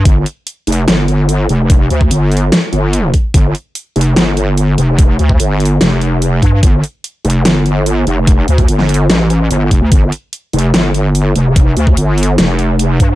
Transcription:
<<
  \new Staff \with { instrumentName = "Wobble bass" } { \clef bass \time 4/4 \key c \dorian \tempo 4 = 146 g,,8 r4 f,,8 g,,4. f,,8~ | f,,8 d,8 g,,4 r8 g,,4 r8 | g,,8 r4 f,,8 g,,4. f,,8~ | f,,8 d,8 g,,4 f,,4. g,8 |
g,,8 r4 f,,8 g,,4. f,,8~ | f,,8 d,8 g,,4 a,,4 g,,8 f,,16 d,16 | g,,8 r4 f,,8 g,,4. f,,8~ | f,,8 d,8 g,,4 f,,4. g,8 | }
  \new DrumStaff \with { instrumentName = "Drums" } \drummode { \time 4/4 <hh bd>8 hh8 hh8 hh32 hh16. <hh sn>8 hh8 hh8 hh8 | <hh bd>8 hh16 bd16 hh8 hh32 hh16. <hh sn>8 hh8 hh8 <hh bd>8 | <hh bd>8 hh8 hh8 hh32 hh16. <hh sn>8 hh8 hh8 hh8 | <hh bd>8 hh16 bd16 hh8 hh32 hh16. <hh sn>8 hh8 hh8 <hh bd>8 |
<hh bd>8 hh8 hh8 hh32 hh16. <hh sn>8 hh8 hh8 hh8 | <hh bd>8 hh16 <hh bd>16 hh16 sn16 hh32 hh16. <hh sn>8 hh8 hh8 <hh bd>8 | <hh bd>8 hh8 hh8 hh32 hh16. <hh sn>8 hh8 hh8 hh8 | <hh bd>8 hh16 bd16 hh8 hh32 hh16. <hh sn>8 hh8 hh8 <hh bd>8 | }
>>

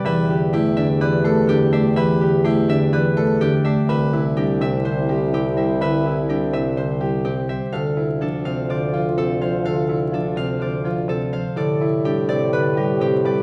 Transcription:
<<
  \new Staff \with { instrumentName = "Harp" } { \time 4/4 \key d \dorian \tempo 4 = 125 <g' b' d'' e''>4 g'8 e''8 b'4 g'8 e''8 | e''4 g'8 e''8 b'4 g'8 e''8 | e''4 g'8 e''8 c''4 g'8 e''8 | e''4 g'8 e''8 c''4 g'8 e''8 |
f''4 a'8 f''8 d''4 a'8 f''8 | f''4 a'8 f''8 d''4 a'8 f''8 | d''4 g'8 d''8 b'4 g'8 d''8 | }
  \new Staff \with { instrumentName = "French horn" } { \time 4/4 \key d \dorian g'1~ | g'2.~ g'8 r8 | e'1~ | e'2.~ e'8 r8 |
f'1~ | f'2.~ f'8 r8 | g'1 | }
  \new Staff \with { instrumentName = "Grand piano" } { \time 4/4 \key d \dorian b'8 g'8 e'8 d'8 d''8 a'8 d'8 d''8 | b'8 g'8 e'8 d'8 d''8 a'8 d'8 d''8 | b'8 e'8 d'8 c'8 c''8 g'8 c'8 c''8 | b'8 e'8 d'8 c'8 c''8 g'8 c'8 c''8 |
a'8 e'8 d'8 c'8 c''8 f'8 c'8 c''8 | a'8 e'8 d'8 c'8 c''8 f'8 c'8 c''8 | a'8 e'8 d'8 c'8 b'8 g'8 c'8 b'8 | }
  \new Staff \with { instrumentName = "Marimba" } { \clef bass \time 4/4 \key d \dorian e8 d8 a8 d8 e8 a8 d8 a8 | e8 d8 a8 d8 e8 a8 d8 a8 | d8 c8 g8 c8 d8 g8 c8 g8 | d8 c8 g8 c8 d8 g8 c8 g8 |
d8 c8 f8 c8 d8 f8 c8 f8 | d8 c8 f8 c8 d8 f8 c8 f8 | d8 c8 g8 c8 d8 g8 c8 g8 | }
  \new Staff \with { instrumentName = "Bassoon" } { \clef bass \time 4/4 \key d \dorian e,1~ | e,1 | c,1~ | c,1 |
d,1~ | d,1 | a,1 | }
>>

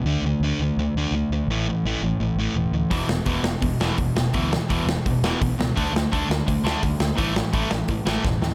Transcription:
<<
  \new Staff \with { instrumentName = "Distorted electric guitar" } { \clef bass \time 4/4 \key d \lydian \tempo 4 = 168 <d a d'>8 <d a>8 <d a d'>8 <d a>8 <d a>8 <d a d'>8 <d a>8 <d a>8 | <a, e a>8 <a, e>8 <a, e a>8 <a, e>8 <a, e>8 <a, e a>8 <a, e>8 <a, e>8 | <e, b, e>8 <e, b,>8 <e, b, e>8 <e, b,>8 <e, b,>8 <e, b, e>8 <e, b,>8 <e, b,>8 | <e, b, e>8 <e, b,>8 <e, b, e>8 <e, b,>8 <e, b,>8 <e, b, e>8 <e, b,>8 <e, b,>8 |
<d a d'>8 <d a>8 <d a d'>8 <d a>8 <d a>8 <d a d'>8 <d a>8 <d a>8 | <a, e a>8 <a, e>8 <a, e a>8 <a, e>8 <a, e>8 <a, e a>8 <a, e>8 <a, e>8 | }
  \new Staff \with { instrumentName = "Overdriven electric guitar" } { \clef bass \time 4/4 \key d \lydian r1 | r1 | <e, b, e>8 <e, b,>8 <e, b, e>8 <e, b,>8 <e, b,>8 <e, b, e>8 <e, b,>8 <e, b,>8 | <e, b, e>8 <e, b,>8 <e, b, e>8 <e, b,>8 <e, b,>8 <e, b, e>8 <e, b,>8 <e, b,>8 |
<d a d'>8 <d a>8 <d a d'>8 <d a>8 <d a>8 <d a d'>8 <d a>8 <d a>8 | <a, e a>8 <a, e>8 <a, e a>8 <a, e>8 <a, e>8 <a, e a>8 <a, e>8 <a, e>8 | }
  \new Staff \with { instrumentName = "Fretless electric bass" } { \clef bass \time 4/4 \key d \lydian d,8 d,8 d,8 d,8 d,8 d,8 d,8 d,8 | a,,4 a,,8 a,,8 a,,8 a,,8 e,,8 d,8 | e,,8 e,,8 e,,8 e,,8 e,,8 e,,8 e,,8 e,,8 | d,4 e,,8 e,,8 e,,8 e,,8 b,,8 cis,8 |
d,8 d,8 d,8 d,8 d,8 d,8 d,8 d,8 | a,,4 a,,8 a,,8 a,,8 a,,8 e,,8 dis,8 | }
  \new DrumStaff \with { instrumentName = "Drums" } \drummode { \time 4/4 r4 r4 r4 r4 | r4 r4 r4 r4 | <hho bd>8 sn8 <hho bd>8 sn8 <hho bd>8 sn8 <hho bd>8 sn8 | <hho bd>8 sn8 <hho bd>8 sn8 <hho bd>8 sn8 <hho bd>8 sn8 |
<hho bd>8 sn8 <hho bd>8 sn8 <hho bd>8 sn8 <hho bd>8 sn8 | <hho bd>8 sn8 <hho bd>8 sn8 <hho bd>8 sn8 <bd sn>8 sn8 | }
>>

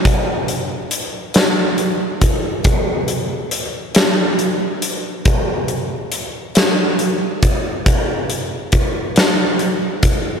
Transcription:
\new DrumStaff \with { instrumentName = "Drums" } \drummode { \time 6/8 \tempo 4. = 46 <hh bd>8 hh8 hh8 <hh sn>8 hh8 <hh bd>8 | <hh bd>8 hh8 hh8 <hh sn>8 hh8 hh8 | <hh bd>8 hh8 hh8 <hh sn>8 hh8 <hh bd>8 | <hh bd>8 hh8 <hh bd>8 <hh sn>8 hh8 <hh bd>8 | }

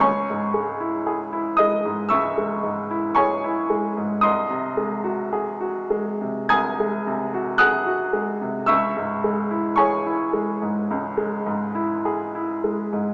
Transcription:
<<
  \new Staff \with { instrumentName = "Grand piano" } { \time 4/4 \key cis \minor \tempo 4 = 55 <cis'' gis'' cis'''>4. <dis'' dis'''>8 <e'' cis''' e'''>4 <cis'' gis'' cis'''>4 | <dis'' bis'' dis'''>2 <gis'' dis''' gis'''>4 <fis'' dis''' fis'''>4 | <e'' cis''' e'''>4 <cis'' gis'' cis'''>2 r4 | }
  \new Staff \with { instrumentName = "Grand piano" } { \clef bass \time 4/4 \key cis \minor cis,16 gis,16 gis16 e'16 gis'16 e'16 gis16 gis,16 cis,16 gis16 gis,16 e'16 gis'16 e'16 gis16 gis,16 | bis,,16 bis,16 gis16 fis'16 gis'16 fis'16 gis16 bis,16 bis,,16 gis16 bis,16 fis'16 gis'16 fis'16 gis16 bis,16 | cis,16 gis,16 gis16 e'16 gis'16 e'16 gis16 gis,16 cis,16 gis16 gis,16 e'16 gis'16 e'16 gis16 gis,16 | }
>>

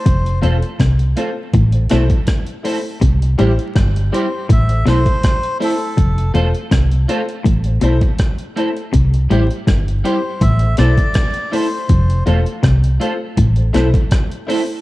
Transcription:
<<
  \new Staff \with { instrumentName = "Melodica" } { \time 4/4 \key a \minor \tempo 4 = 81 c''8 r2. r8 | r4. c''8 e''8 c''4 a'8~ | a'8 r2. r8 | r4. c''8 e''8 d''4 c''8~ |
c''8 r2. r8 | }
  \new Staff \with { instrumentName = "Grand piano" } { \time 4/4 \key a \minor r8 <f' a' c''>16 r8. <f' a' c''>16 r8 <a' c''>16 <e' a' c''>16 r8. <e' a' c''>16 r16 | r8 <e' g' c''>16 r8. <e' g' c''>16 r8 <a' c''>16 <e' a' c''>16 r8. <e' a' c''>16 r16 | r8 <f' a' c''>16 r8. <f' a' c''>16 r8 <a' c''>16 <e' a' c''>16 r8. <e' a' c''>16 r16 | r8 <e' g' c''>16 r8. <e' g' c''>16 r8 <a' c''>16 <e' a' c''>16 r8. <e' a' c''>16 r16 |
r8 <f' a' c''>16 r8. <f' a' c''>16 r8 <a' c''>16 <e' a' c''>16 r8. <e' a' c''>16 r16 | }
  \new Staff \with { instrumentName = "Clean electric guitar" } { \time 4/4 \key a \minor r8 <a c' f' a'>8 r8 <a c' f' a'>8 r8 <a c' e' a'>8 r8 <a c' e' a'>8 | r8 <g c' e' g'>8 r8 <g c' e' g'>8 r8 <a c' e' a'>8 r8 <a c' e' a'>8 | r8 <a c' f' a'>8 r8 <a c' f' a'>8 r8 <a c' e' a'>8 r8 <a c' e' a'>8 | r8 <g c' e' g'>8 r8 <g c' e' g'>8 r8 <a c' e' a'>8 r8 <a c' e' a'>8 |
r8 <a c' f' a'>8 r8 <a c' f' a'>8 r8 <a c' e' a'>8 r8 <a c' e' a'>8 | }
  \new Staff \with { instrumentName = "Clean electric guitar" } { \clef bass \time 4/4 \key a \minor f,8 e,16 r16 c8 r8 a,8 b,16 r4 r16 | c8 a,16 r16 g,8 r8 a,8 b,16 r4 r16 | f,8 e,16 r16 c8 r8 a,8 b,16 r4 r16 | c8 a,16 r16 g,8 r8 a,8 b,16 r4 r16 |
f,8 e,16 r16 c8 r8 a,8 b,16 r4 r16 | }
  \new Staff \with { instrumentName = "Fingered electric bass" } { \clef bass \time 4/4 \key a \minor f,,8 e,,16 r16 c,8 r8 a,,8 b,,16 r4 r16 | c,8 a,,16 r16 g,,8 r8 a,,8 b,,16 r4 r16 | f,,8 e,,16 r16 c,8 r8 a,,8 b,,16 r4 r16 | c,8 a,,16 r16 g,,8 r8 a,,8 b,,16 r4 r16 |
f,,8 e,,16 r16 c,8 r8 a,,8 b,,16 r4 r16 | }
  \new DrumStaff \with { instrumentName = "Drums" } \drummode { \time 4/4 <hh bd>16 hh16 hh16 hh16 <hh bd ss>16 hh16 hh8 <hh bd>16 hh16 <hh ss>16 <hh bd>16 <hh bd ss>16 hh16 hho8 | <hh bd>16 hh16 hh16 hh16 <hh bd ss>16 hh16 hh8 <hh bd>16 hh16 <hh ss>16 <hh bd>16 <hh bd ss>16 hh16 hho8 | <hh bd>16 hh16 hh16 hh16 <hh bd ss>16 hh16 hh16 hh16 <hh bd>16 hh16 hh16 <hh bd>16 <hh bd ss>16 hh16 hh16 hh16 | <hh bd>16 hh16 hh16 hh16 <hh bd ss>16 hh16 hh8 <hh bd>16 hh16 <hh ss>16 <hh bd>16 <hh bd ss>16 hh16 hho8 |
<hh bd>16 hh16 hh16 hh16 <hh bd ss>16 hh16 hh8 <hh bd>16 hh16 <hh ss>16 <hh bd>16 <hh bd ss>16 hh16 hho8 | }
>>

